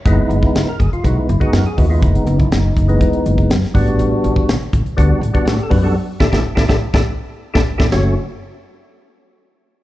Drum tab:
RD |----------------|----------------|----------------|----------------|
HH |x-x-x-xxx-xxxxo-|xxxxx-xxxxxxxxox|x-x-x-xxx-xxxxo-|----------------|
SD |----o-------o---|----o-------oo--|----o-------o---|--oo-oo-o----o-o|
BD |o--o--o-o--o--o-|o--o--o-o--o--o-|---o--o-o--o--o-|--oo-oo-o----o-o|

RD |b---------------|
HH |----------------|
SD |o---------------|
BD |----------------|